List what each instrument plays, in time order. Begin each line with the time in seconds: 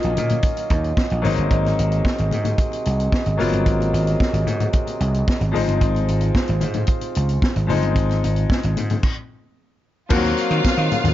Already playing: grand piano F#3 A#3 C#4 D#4 F4, french horn section F#3 C#4 F4 D#5
0.03 slap bass A#1, closed hi-hat, muted conga
0.17 slap bass A#2, closed hi-hat, high conga, low conga
0.29 closed hi-hat, high conga, low conga
0.43 kick, closed hi-hat, muted conga
0.57 closed hi-hat, muted conga
0.70 slap bass D#2, kick, closed hi-hat
0.84 closed hi-hat
0.97 kick, snare, muted conga
1.10 slap bass A#1, closed hi-hat
1.22 slap bass G#1, french horn section C3 F#3 G#4 D#5, grand piano F#3 A#3 C4 D#4, open hi-hat, high conga, low conga
1.37 slap bass G1, closed hi-hat
1.51 slap bass G#1, kick, closed hi-hat
1.65 snare, closed hi-hat, muted conga
1.79 slap bass G#1, closed hi-hat
1.92 closed hi-hat
2.05 kick, snare, muted conga
2.18 slap bass G#1, closed hi-hat, muted conga
2.31 slap bass G#2, closed hi-hat, high conga, low conga
2.45 closed hi-hat, high conga, low conga
2.58 kick, closed hi-hat, muted conga
2.72 closed hi-hat, muted conga
2.85 slap bass C2, closed hi-hat
3.00 closed hi-hat
3.12 kick, snare, muted conga
3.26 slap bass G#1, closed hi-hat, muted conga
3.37 slap bass F#1, grand piano F#3 A#3 B3 F4, open hi-hat, high conga, low conga
3.46 grand piano C4
3.53 slap bass G1, closed hi-hat
3.66 slap bass G#1, kick, closed hi-hat, muted conga
3.81 closed hi-hat, muted conga
3.93 slap bass G#1, closed hi-hat
4.07 closed hi-hat
4.20 kick, snare
4.33 slap bass G#1, closed hi-hat, muted conga
4.46 slap bass G#2, closed hi-hat, high conga, low conga
4.60 closed hi-hat, high conga, low conga
4.73 kick, closed hi-hat, muted conga
4.87 closed hi-hat, muted conga
5.00 slap bass C2, closed hi-hat
5.14 closed hi-hat
5.28 kick, snare
5.41 slap bass G#1, closed hi-hat
5.51 slap bass G#1, grand piano F3 G#3 C4 D#4, french horn section F4, open hi-hat, high conga, low conga
5.56 french horn section C5
5.68 slap bass G1, closed hi-hat
5.81 slap bass G#1, kick, closed hi-hat, muted conga
5.95 closed hi-hat, muted conga
6.08 slap bass G#1, closed hi-hat
6.21 closed hi-hat
6.35 kick, snare, muted conga
6.48 slap bass G#1, closed hi-hat, muted conga
6.61 slap bass G#2, closed hi-hat, high conga, low conga
6.74 closed hi-hat, high conga, low conga
6.87 kick, closed hi-hat
7.01 closed hi-hat, muted conga
7.15 slap bass C#2, closed hi-hat
7.29 closed hi-hat
7.42 kick, snare, muted conga
7.56 slap bass G#1, closed hi-hat
7.67 slap bass F#1, grand piano F3 G#3 C4 D#4, open hi-hat, high conga, low conga
7.82 slap bass G1, closed hi-hat
7.96 slap bass G#1, kick, closed hi-hat, muted conga
8.10 snare, closed hi-hat, muted conga
8.24 slap bass G#1, closed hi-hat
8.36 closed hi-hat
8.50 kick, snare, muted conga
8.63 slap bass G#1, closed hi-hat
8.77 slap bass G#2, closed hi-hat, high conga, low conga
8.90 closed hi-hat, high conga, low conga
9.03 kick, crash
10.09 slap bass D#2, grand piano F3 A#3 C4 F#4, french horn section F#3 C4 D#4 C5, string section F4 F5, kick, crash, tambourine
10.15 grand piano F#3
10.24 closed hi-hat, tambourine, muted conga
10.37 closed hi-hat, tambourine
10.50 slap bass D#3, closed hi-hat
10.65 muted slap bass stroke, kick, snare, tambourine, muted conga
10.78 slap bass D#3, closed hi-hat
10.92 closed hi-hat, tambourine, high conga, low conga
11.04 slap bass D#2, closed hi-hat, tambourine, high conga, low conga